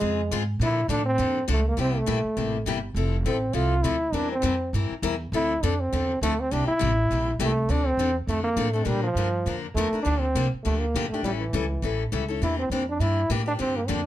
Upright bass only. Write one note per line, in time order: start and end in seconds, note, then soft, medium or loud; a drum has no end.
0.02 0.30 F2 medium
0.31 0.59 G#2 loud
0.59 0.88 A#2 loud
0.88 1.18 A2 medium
1.18 1.47 F2 medium
1.48 1.77 C#2 medium
1.78 2.07 C2 medium
2.07 2.23 A#1 medium
2.24 muted upright bass stroke soft
2.37 2.65 A1 medium
2.66 2.94 G1 medium
2.94 3.24 F1 medium
3.25 3.53 A1 medium
3.54 3.83 C2 medium
3.83 4.12 D2 medium
4.12 4.42 E2 medium
4.43 4.72 F2 medium
4.73 4.89 G2 loud
4.91 muted upright bass stroke soft
5.02 5.31 E2 loud
5.32 5.61 D2 medium
5.63 5.91 F2 medium
5.93 6.21 E2 medium
6.21 6.50 D2 medium
6.52 6.67 C2 medium
6.81 7.10 A1 medium
7.10 7.39 A#1 medium
7.39 7.68 C2 medium
7.69 7.97 D2 medium
7.97 8.27 E2 medium
8.27 8.56 F2 medium
8.56 8.85 A2 medium
8.86 9.15 A#2 medium
9.15 9.45 G2 medium
9.46 9.74 F2 medium
9.75 9.91 E2 medium
9.92 muted upright bass stroke soft
10.05 10.34 D2 medium
10.35 10.51 C2 medium
10.53 muted upright bass stroke soft
10.65 10.94 D2 medium
10.94 11.10 G1 medium
11.12 muted upright bass stroke soft
11.23 11.52 A1 medium
11.53 11.82 C#2 loud
11.82 12.11 A1 medium
12.12 12.41 C#2 medium
12.41 12.69 E2 medium
12.70 12.99 F2 medium
12.99 13.29 G2 medium
13.30 13.59 A2 medium
13.59 13.88 G2 medium
13.89 14.06 F2 loud